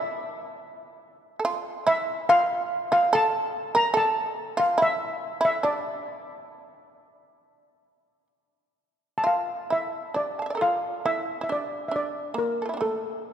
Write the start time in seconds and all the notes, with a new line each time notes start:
Already playing: E4 E5
1.39 A4
1.45 F4
1.87 E4 E5
2.29 F4 F5
2.92 F4 F5
3.13 A4 A5
3.75 A#4 A#5
3.94 A4 A5
4.34 F4
4.57 F4 F5
4.78 E4
4.82 E5
5.41 E4
5.45 E5
5.63 D4 D5
9.18 A5
9.24 F4 F5
9.70 E4 E5
10.14 D4 D5
10.39 F5 A5
10.46 E5
10.50 D5
10.55 A4 A#4
10.61 F4 F5
11.06 E4 E5
11.41 E4 E5
11.49 D4 D5
11.88 D4 E5
11.96 D5
12.34 A#3
12.38 A#4
12.62 F4 A4
12.69 E4
12.74 A#3 D4
12.81 A3 A4